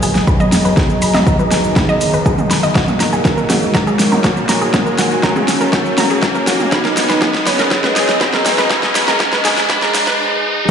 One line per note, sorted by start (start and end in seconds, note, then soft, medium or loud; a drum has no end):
0.00 0.11 G#1 medium
0.00 2.71 B2 medium
0.00 2.71 F#3 medium
0.00 0.18 A#3 loud
0.00 2.71 G#4 medium
0.00 4.25 G#4 medium
0.00 0.07 G#4 medium
0.00 3.81 D#5 medium
0.00 0.37 G#5 medium
0.00 4.27 A#5 medium
0.00 open hi-hat loud
0.00 riser medium
0.00 shaker medium
0.15 0.24 G#1 medium
0.15 snare medium
0.15 shaker soft
0.27 1.17 F#3 loud
0.27 0.35 B5 medium
0.27 kick loud
0.27 shaker soft
0.40 0.48 D#5 loud
0.40 shaker soft
0.52 0.61 F#1 medium
0.52 snare medium
0.52 mid tom medium
0.52 open hi-hat loud
0.52 shaker medium
0.65 0.73 G#1 medium
0.65 0.69 B4 medium
0.65 shaker soft
0.77 0.82 G#4 medium
0.77 kick loud
0.77 snare medium
0.77 shaker soft
0.90 shaker soft
1.02 1.10 G#1 medium
1.02 1.10 B5 medium
1.02 open hi-hat loud
1.02 shaker medium
1.14 1.23 G#1 medium
1.14 1.22 D#5 loud
1.14 snare medium
1.14 mid tom medium
1.14 shaker soft
1.27 2.77 D#3 loud
1.27 kick loud
1.27 shaker soft
1.39 1.44 B4 medium
1.39 shaker soft
1.51 1.60 G#1 medium
1.51 1.56 G#4 medium
1.51 snare medium
1.51 open hi-hat loud
1.51 shaker medium
1.64 1.72 G#1 medium
1.64 shaker soft
1.76 1.84 B5 medium
1.76 kick loud
1.76 snare medium
1.76 mid tom medium
1.76 shaker soft
1.89 1.96 D#5 loud
1.89 shaker soft
2.01 2.10 G#1 medium
2.01 open hi-hat loud
2.01 shaker medium
2.14 2.22 G#1 medium
2.14 2.18 B4 medium
2.14 shaker soft
2.26 2.30 G#4 medium
2.26 kick loud
2.26 shaker soft
2.38 mid tom medium
2.38 shaker soft
2.50 2.59 F#1 medium
2.50 2.58 B5 medium
2.50 snare medium
2.50 open hi-hat loud
2.50 shaker medium
2.63 2.71 G#1 medium
2.63 2.71 D#5 loud
2.63 shaker soft
2.75 6.68 D#3 medium
2.75 3.51 A#3 loud
2.75 6.68 A#3 medium
2.75 6.68 F#4 medium
2.75 2.80 F#4 medium
2.75 7.93 F#4 medium
2.75 kick loud
2.75 snare medium
2.75 shaker soft
2.88 mid tom medium
2.88 shaker soft
2.94 7.98 C#5 medium
3.00 3.09 F#1 loud
3.00 3.08 A#5 medium
3.00 snare medium
3.00 open hi-hat loud
3.00 shaker medium
3.13 3.21 F#1 medium
3.13 3.20 G#4 medium
3.13 shaker soft
3.25 kick loud
3.25 snare medium
3.25 shaker soft
3.37 3.42 A#4 medium
3.37 shaker soft
3.50 3.58 F#1 loud
3.50 4.14 G#3 loud
3.50 3.54 F#4 medium
3.50 snare medium
3.50 mid tom medium
3.50 open hi-hat loud
3.50 shaker medium
3.60 3.71 F#1 medium
3.60 7.39 G#5 medium
3.60 shaker soft
3.74 3.82 A#5 medium
3.74 kick loud
3.74 snare medium
3.74 shaker soft
3.87 3.95 G#4 medium
3.87 shaker soft
3.99 4.08 F#1 medium
3.99 snare medium
3.99 open hi-hat loud
3.99 shaker medium
4.12 4.20 F#1 medium
4.12 4.16 A#4 medium
4.12 mid tom medium
4.12 shaker soft
4.24 5.25 A#3 loud
4.24 4.29 F#4 medium
4.24 kick loud
4.24 snare medium
4.24 shaker soft
4.37 shaker soft
4.49 4.57 D#1 medium
4.49 4.57 A#5 medium
4.49 snare medium
4.49 open hi-hat loud
4.49 shaker medium
4.61 4.70 F#1 medium
4.61 4.69 G#4 medium
4.61 shaker soft
4.74 kick loud
4.74 snare medium
4.74 mid tom loud
4.74 shaker soft
4.86 4.91 A#4 medium
4.86 shaker soft
4.98 5.07 F#1 loud
4.98 5.03 F#4 medium
4.98 snare medium
4.98 open hi-hat loud
4.98 shaker medium
5.11 5.19 F#1 medium
5.11 shaker soft
5.23 6.73 C#4 loud
5.23 5.31 A#5 medium
5.23 kick loud
5.23 snare medium
5.23 shaker soft
5.36 5.43 G#4 medium
5.36 mid tom medium
5.36 shaker soft
5.48 5.57 F#1 medium
5.48 snare medium
5.48 open hi-hat loud
5.48 shaker medium
5.61 5.69 F#1 medium
5.61 5.65 A#4 medium
5.61 shaker soft
5.73 5.77 F#4 medium
5.73 kick loud
5.73 snare medium
5.73 shaker soft
5.86 shaker soft
5.98 6.06 F#1 medium
5.98 6.05 A#5 medium
5.98 snare medium
5.98 mid tom medium
5.98 open hi-hat loud
5.98 shaker medium
6.10 6.19 F#1 medium
6.10 6.18 G#4 medium
6.10 shaker soft
6.22 kick loud
6.22 snare medium
6.22 shaker soft
6.35 6.40 A#4 medium
6.35 shaker soft
6.47 6.56 D#1 medium
6.47 6.52 F#4 medium
6.47 snare medium
6.47 open hi-hat loud
6.47 shaker medium
6.60 6.68 F#1 medium
6.60 mid tom medium
6.60 shaker soft
6.72 10.16 F#3 medium
6.72 10.16 B3 medium
6.72 7.48 D#4 loud
6.72 10.16 G#4 medium
6.72 10.19 G#4 medium
6.72 6.80 B5 medium
6.72 kick loud
6.72 snare medium
6.72 shaker soft
6.80 10.19 D#5 medium
6.85 6.92 A#4 medium
6.85 snare medium
6.85 shaker soft
6.97 7.05 G#1 loud
6.97 snare medium
6.97 open hi-hat loud
6.97 shaker medium
7.09 7.18 G#1 medium
7.09 7.14 B4 medium
7.09 snare medium
7.09 shaker soft
7.22 7.26 G#4 medium
7.22 10.19 A#5 medium
7.22 kick loud
7.22 snare medium
7.22 mid tom medium
7.22 shaker soft
7.34 snare medium
7.34 shaker soft
7.46 7.55 G#1 loud
7.46 8.11 C#4 loud
7.46 7.54 B5 medium
7.46 snare medium
7.46 open hi-hat loud
7.46 shaker medium
7.59 7.67 G#1 medium
7.59 7.67 A#4 medium
7.59 snare medium
7.59 shaker soft
7.71 kick loud
7.71 snare loud
7.71 shaker soft
7.84 7.88 B4 medium
7.84 snare medium
7.84 mid tom loud
7.84 shaker soft
7.96 8.05 G#1 medium
7.96 8.01 G#4 medium
7.96 snare loud
7.96 open hi-hat loud
7.96 shaker medium
8.09 8.17 G#1 medium
8.09 snare medium
8.09 shaker soft
8.21 9.10 B3 loud
8.21 8.29 B5 medium
8.21 kick loud
8.21 snare loud
8.21 shaker soft
8.33 8.41 A#4 medium
8.33 snare medium
8.33 shaker soft
8.46 8.54 F#1 medium
8.46 snare loud
8.46 mid tom loud
8.46 open hi-hat loud
8.46 shaker medium
8.58 8.67 G#1 medium
8.58 8.63 B4 medium
8.58 snare medium
8.58 shaker soft
8.70 8.75 G#4 medium
8.70 kick loud
8.70 snare loud
8.70 shaker soft
8.83 snare medium
8.83 shaker soft
8.95 9.04 G#1 loud
8.95 9.03 B5 medium
8.95 snare loud
8.95 open hi-hat loud
8.95 shaker medium
9.08 9.16 G#1 medium
9.08 9.15 A#4 medium
9.08 snare medium
9.08 mid tom medium
9.08 shaker soft
9.20 10.59 G#3 loud
9.20 kick loud
9.20 snare loud
9.20 shaker soft
9.33 9.37 B4 medium
9.33 snare medium
9.33 shaker soft
9.45 9.53 G#1 loud
9.45 9.49 G#4 medium
9.45 snare loud
9.45 open hi-hat loud
9.45 shaker medium
9.57 9.66 G#1 medium
9.57 snare medium
9.57 shaker soft
9.69 9.77 B5 medium
9.69 kick loud
9.69 snare loud
9.69 mid tom loud
9.69 shaker soft
9.82 9.90 A#4 medium
9.82 snare loud
9.82 shaker soft
9.94 10.03 G#1 medium
9.94 snare loud
9.94 open hi-hat loud
9.94 shaker medium
10.07 10.15 G#1 medium
10.07 10.11 B4 medium
10.07 snare loud
10.07 shaker soft